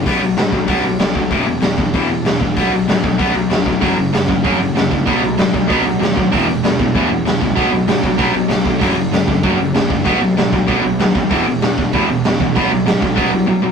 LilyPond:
<<
  \new Staff \with { instrumentName = "Distorted electric guitar" } { \clef bass \time 4/4 \key b \major \tempo 4 = 192 <b, fis b>8 <b, fis>8 <b, fis>8 <b, fis>8 <b, fis b>8 <b, fis>8 <b, fis>8 <b, fis>8 | <e, b, e>8 <e, b,>8 <e, b,>8 <e, b,>8 <e, b, e>8 <e, b,>8 <e, b,>8 <e, b,>8 | <b, fis b>8 <b, fis>8 <b, fis>8 <b, fis>8 <b, fis b>8 <b, fis>8 <b, fis>8 <b, fis>8 | <fis, cis fis>8 <fis, cis>8 <fis, cis>8 <fis, cis>8 <fis, cis fis>8 <fis, cis>8 <fis, cis>8 <fis, cis>8 |
<b, fis b>8 <b, fis>8 <b, fis>8 <b, fis>8 <b, fis b>8 <b, fis>8 <b, fis>8 <b, fis>8 | <e, b, e>8 <e, b,>8 <e, b,>8 <e, b,>8 <e, b, e>8 <e, b,>8 <e, b,>8 <e, b,>8 | <b, fis b>8 <b, fis>8 <b, fis>8 <b, fis>8 <b, fis b>8 <b, fis>8 <b, fis>8 <b, fis>8 | <fis, cis fis>8 <fis, cis>8 <fis, cis>8 <fis, cis>8 <fis, cis fis>8 <fis, cis>8 <fis, cis>8 <fis, cis>8 |
<b, fis b>8 <b, fis>8 <b, fis>8 <b, fis>8 <b, fis b>8 <b, fis>8 <b, fis>8 <b, fis>8 | <e, b, e>8 <e, b,>8 <e, b,>8 <e, b,>8 <e, b, e>8 <e, b,>8 <e, b,>8 <e, b,>8 | <b, fis b>8 <b, fis>8 <b, fis>8 <b, fis>8 <b, fis b>8 <b, fis>8 <b, fis>8 <b, fis>8 | }
  \new Staff \with { instrumentName = "Overdriven electric guitar" } { \clef bass \time 4/4 \key b \major r1 | r1 | r1 | <fis, cis fis>8 <fis, cis>8 <fis, cis>8 <fis, cis>8 <fis, cis fis>8 <fis, cis>8 <fis, cis>8 <fis, cis>8 |
<b, fis b>8 <b, fis>8 <b, fis>8 <b, fis>8 <b, fis b>8 <b, fis>8 <b, fis>8 <b, fis>8 | <e, b, e>8 <e, b,>8 <e, b,>8 <e, b,>8 <e, b, e>8 <e, b,>8 <e, b,>8 <e, b,>8 | <b, fis b>8 <b, fis>8 <b, fis>8 <b, fis>8 <b, fis b>8 <b, fis>8 <b, fis>8 <b, fis>8 | <fis, cis fis>8 <fis, cis>8 <fis, cis>8 <fis, cis>8 <fis, cis fis>8 <fis, cis>8 <fis, cis>8 <fis, cis>8 |
<b, fis b>8 <b, fis>8 <b, fis>8 <b, fis>8 <b, fis b>8 <b, fis>8 <b, fis>8 <b, fis>8 | <e, b, e>8 <e, b,>8 <e, b,>8 <e, b,>8 <e, b, e>8 <e, b,>8 <e, b,>8 <e, b,>8 | <b, fis b>8 <b, fis>8 <b, fis>8 <b, fis>8 <b, fis b>8 <b, fis>8 <b, fis>8 <b, fis>8 | }
  \new Staff \with { instrumentName = "Picked electric bass" } { \clef bass \time 4/4 \key b \major b,,8 b,,8 gis,8 b,,8 b,,8 b,,8 b,,4 | e,,8 e,,8 e,,8 e,,8 e,,8 e,,8 e,,8 e,,8 | b,,8 b,,8 gis,8 b,,8 b,,8 b,,8 e,,4 | fis,,8 fis,,8 fis,,8 fis,,8 fis,,8 fis,,8 fis,,8 fis,,8 |
b,,8 b,,8 gis,8 b,,8 b,,8 b,,8 dis,4 | e,,8 e,,8 e,,8 e,,8 e,,8 e,,8 e,,8 cis,8 | b,,8 b,,8 gis,8 b,,8 b,,8 b,,8 b,,4 | fis,,8 fis,,8 fis,,8 fis,,8 fis,,8 fis,,8 fis,,8 fis,,8 |
b,,8 b,,8 gis,8 b,,8 b,,8 b,,8 dis,4 | e,,8 e,,8 e,,8 e,,8 e,,8 e,,8 e,,8 e,,8 | b,,8 b,,8 gis,8 b,,8 b,,8 bis,,8 r4 | }
  \new DrumStaff \with { instrumentName = "Drums" } \drummode { \time 4/4 <hho bd>4 <hho sn>8 bd8 <hho bd>4 <hho sn>8 bd8 | <hho bd>4 <hho sn>8 bd8 <hho bd>4 <hho sn>8 bd8 | <hho bd>4 <hho sn>8 bd8 <hho bd>4 <hho sn>8 bd8 | <hho bd>4 <hho sn>8 bd8 <hho bd>4 <hho sn>8 bd8 |
<hho bd>4 <hho sn>8 bd8 <hho bd>4 <hho sn>8 bd8 | <hho bd>4 <hho sn>8 bd8 <hho bd>4 <hho sn>8 bd8 | <hho bd>4 <hho sn>8 bd8 <hho bd>4 <hho sn>8 bd8 | <hho bd>4 <hho sn>8 bd8 <hho bd>4 <hho sn>8 bd8 |
<hho bd>4 <hho sn>8 bd8 <hho bd>4 <hho sn>8 bd8 | <hho bd>4 <hho sn>8 bd8 <hho bd>4 <hho sn>8 bd8 | <hho bd>4 <hho sn>8 bd8 <hho bd>4 r4 | }
>>